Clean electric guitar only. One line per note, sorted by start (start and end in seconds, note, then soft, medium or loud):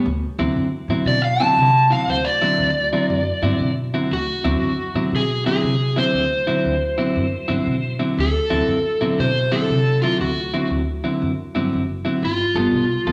0.39 0.68 D3 medium
0.39 0.67 F#3 medium
0.39 0.67 C4 loud
0.39 0.67 E4 medium
0.90 1.18 D3 medium
0.90 1.18 F#3 medium
0.90 1.18 C4 medium
0.90 1.18 E4 medium
1.40 1.69 D3 medium
1.40 1.68 F#3 medium
1.40 1.68 C4 medium
1.40 1.68 E4 loud
1.90 2.19 D3 medium
1.90 2.19 F#3 medium
1.90 2.19 C4 medium
1.90 2.18 E4 medium
2.42 2.70 D3 medium
2.42 2.70 F#3 medium
2.42 2.69 C4 medium
2.42 2.69 E4 medium
2.93 3.21 D3 medium
2.93 3.21 F#3 medium
2.93 3.20 C4 medium
2.93 3.20 E4 medium
3.43 3.71 D3 medium
3.43 3.71 F#3 medium
3.43 3.71 C4 medium
3.43 3.70 E4 loud
3.94 4.12 D3 medium
3.94 4.12 F#3 medium
3.94 4.12 C4 medium
3.94 4.12 E4 medium
4.44 4.72 D3 medium
4.44 4.72 F#3 medium
4.44 4.72 C4 loud
4.44 4.72 E4 medium
4.95 5.23 D3 medium
4.95 5.23 F#3 medium
4.95 5.23 C4 medium
4.95 5.23 E4 medium
5.46 5.74 D3 medium
5.46 5.74 F#3 medium
5.46 5.74 C4 medium
5.46 5.73 E4 medium
5.96 6.24 D3 medium
5.96 6.24 F#3 medium
5.96 6.24 C4 medium
5.96 6.24 E4 medium
6.47 6.75 D3 medium
6.47 6.75 F#3 medium
6.47 6.75 C4 medium
6.47 6.75 E4 medium
6.98 7.26 D3 medium
6.98 7.26 F#3 medium
6.98 7.26 C4 medium
6.98 7.25 E4 medium
7.48 7.77 D3 medium
7.48 7.76 F#3 medium
7.48 7.76 C4 medium
7.48 7.76 E4 loud
7.99 8.27 D3 medium
7.99 8.27 F#3 medium
7.99 8.27 C4 medium
7.99 8.27 E4 medium
8.50 8.78 D3 medium
8.50 8.78 F#3 medium
8.50 8.78 C4 medium
8.50 8.78 E4 medium
9.01 9.29 D3 medium
9.01 9.29 F#3 medium
9.01 9.29 C4 medium
9.01 9.28 E4 medium
9.52 9.80 D3 medium
9.52 9.80 F#3 medium
9.52 9.79 C4 medium
9.52 9.79 E4 medium
10.03 10.31 D3 medium
10.03 10.31 F#3 medium
10.03 10.30 C4 medium
10.03 10.30 E4 medium
10.54 10.81 D3 medium
10.54 10.81 F#3 medium
10.54 10.81 C4 medium
10.54 10.81 E4 medium
11.04 11.32 D3 medium
11.04 11.32 F#3 medium
11.04 11.32 C4 medium
11.04 11.31 E4 medium
11.55 11.83 D3 medium
11.55 11.83 F#3 medium
11.55 11.83 C4 medium
11.55 11.82 E4 medium
12.05 12.24 D3 medium
12.05 12.23 F#3 medium
12.05 12.23 C4 medium
12.05 12.23 E4 medium
12.56 12.84 G3 medium
12.56 12.84 B3 medium
12.56 12.84 F4 medium
12.56 12.83 A4 medium
13.07 13.12 G3 medium
13.07 13.12 B3 medium
13.07 13.12 F4 medium
13.07 13.12 A4 medium